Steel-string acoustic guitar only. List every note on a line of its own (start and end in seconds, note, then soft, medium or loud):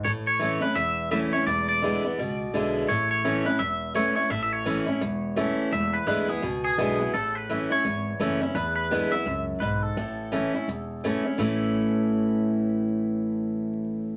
0.05 0.73 A2 medium
0.39 0.60 E3 medium
0.39 0.61 A3 medium
0.39 0.61 C#4 medium
0.39 0.59 E4 medium
0.61 0.75 C#4 medium
0.61 0.75 E4 medium
0.76 1.44 E2 medium
1.11 1.32 E3 medium
1.11 1.32 A3 loud
1.11 1.32 C#4 medium
1.11 1.32 E4 loud
1.33 1.47 C#4 medium
1.33 1.47 E4 medium
1.48 2.16 E2 loud
1.82 2.03 D3 medium
1.82 2.03 G#3 medium
1.82 2.03 B3 loud
1.82 2.03 E4 medium
2.04 2.18 B3 soft
2.04 2.17 E4 medium
2.19 2.87 B2 medium
2.54 2.87 D3 medium
2.54 2.88 G#3 medium
2.54 2.88 B3 medium
2.54 2.88 E4 medium
2.89 3.57 A2 medium
3.24 3.45 E3 medium
3.24 3.45 A3 medium
3.24 3.45 C#4 loud
3.24 3.44 E4 loud
3.45 3.60 C#4 medium
3.45 3.59 E4 medium
3.59 4.27 E2 medium
3.94 4.15 E3 medium
3.94 4.15 A3 medium
3.94 4.16 C#4 medium
3.94 4.14 E4 loud
4.16 4.30 C#4 medium
4.16 4.29 E4 medium
4.30 4.98 A2 medium
4.66 4.86 E3 medium
4.66 4.86 A3 medium
4.66 4.87 C#4 medium
4.66 4.85 E4 loud
4.87 5.01 C#4 medium
4.87 5.00 E4 medium
5.01 5.69 E2 medium
5.36 5.70 E3 medium
5.36 5.71 A3 medium
5.36 5.71 C#4 loud
5.36 5.71 E4 loud
5.72 6.40 E2 medium
6.06 6.27 D3 medium
6.06 6.27 G#3 medium
6.06 6.28 B3 medium
6.06 6.27 E4 loud
6.28 6.43 B3 medium
6.28 6.42 E4 medium
6.42 7.11 B2 medium
6.78 6.99 D3 medium
6.78 6.99 G#3 medium
6.78 6.99 B3 medium
6.78 6.98 E4 loud
6.99 7.13 B3 medium
6.99 7.13 E4 medium
7.14 7.82 A2 medium
7.49 7.70 E3 medium
7.49 7.70 A3 medium
7.49 7.70 C#4 medium
7.49 7.69 E4 medium
7.70 7.84 C#4 medium
7.70 7.84 E4 medium
7.84 8.52 E2 medium
8.20 8.40 E3 medium
8.20 8.41 A3 medium
8.20 8.41 C#4 loud
8.20 8.40 E4 loud
8.41 8.55 C#4 medium
8.41 8.55 E4 medium
8.55 9.23 E2 loud
8.91 9.11 D3 medium
8.91 9.11 G#3 medium
8.91 9.12 B3 medium
8.91 9.11 E4 medium
9.12 9.26 B3 soft
9.12 9.25 E4 medium
9.26 9.60 F#2 medium
9.61 9.95 G#2 medium
9.97 10.65 A2 medium
10.32 10.53 E3 medium
10.32 10.53 A3 medium
10.32 10.53 C#4 medium
10.32 10.53 E4 medium
10.54 10.68 C#4 soft
10.54 10.67 E4 medium
10.69 11.36 E2 medium
11.04 11.24 E3 medium
11.04 11.24 A3 medium
11.04 11.25 C#4 loud
11.04 11.24 E4 loud
11.25 11.38 C#4 medium
11.25 11.38 E4 medium
11.38 14.17 A2 medium
11.38 14.17 E3 medium
11.38 14.17 A3 medium
11.38 14.17 C#4 medium
11.38 14.17 E4 loud